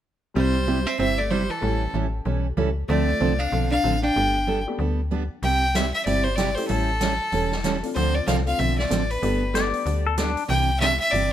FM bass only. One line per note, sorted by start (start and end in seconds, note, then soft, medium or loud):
0.36 0.86 C2 medium
0.99 1.50 G1 medium
1.62 1.88 A1 medium
1.94 2.21 A1 medium
2.26 2.53 B1 medium
2.57 2.84 C#2 medium
2.89 3.14 D2 loud
3.21 3.48 C2 medium
3.52 3.79 B1 medium
3.84 4.11 A1 medium
4.16 4.67 G1 medium
4.79 5.30 D2 medium
5.43 5.93 C2 medium
6.06 6.57 G1 medium
6.70 7.20 A1 medium
7.32 7.83 E1 medium
7.96 8.21 D2 medium
8.28 8.55 C2 medium
8.60 8.86 B1 medium
8.91 9.18 A1 medium
9.22 9.73 G1 loud
9.86 10.36 D2 medium
10.49 11.00 C2 loud
11.13 11.33 G1 medium